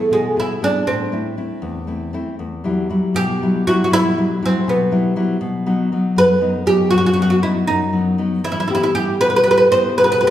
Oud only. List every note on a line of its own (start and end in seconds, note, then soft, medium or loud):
0.13 0.36 G#3 medium
0.40 0.64 E4 medium
0.64 0.86 D4 medium
0.87 2.10 C4 medium
3.16 3.63 G4 medium
3.67 3.83 F#4 medium
3.84 3.91 F#4 medium
3.93 4.39 E4 loud
4.46 4.67 C4 medium
4.69 5.39 B3 medium
6.18 6.67 B4 medium
6.67 6.90 G4 medium
6.91 6.96 F#4 medium
6.98 7.05 F#4 medium
7.06 7.12 F#4 medium
7.14 7.21 F#4 soft
7.22 7.29 F#4 medium
7.30 7.37 F#4 medium
7.43 7.67 E4 medium
7.67 8.41 D#4 medium
8.45 8.51 E4 medium
8.52 8.59 E4 soft
8.60 8.66 E4 medium
8.68 8.74 E4 soft
8.75 8.82 E4 medium
8.83 8.90 E4 medium
8.95 9.19 G4 medium
9.21 9.28 B4 medium
9.30 9.35 B4 soft
9.36 9.42 B4 medium
9.44 9.50 B4 medium
9.51 9.56 B4 medium
9.58 9.65 B4 medium
9.72 9.97 C5 medium
9.98 10.03 B4 medium
10.04 10.11 B4 medium
10.12 10.19 B4 medium
10.21 10.26 B4 medium
10.27 10.30 B4 medium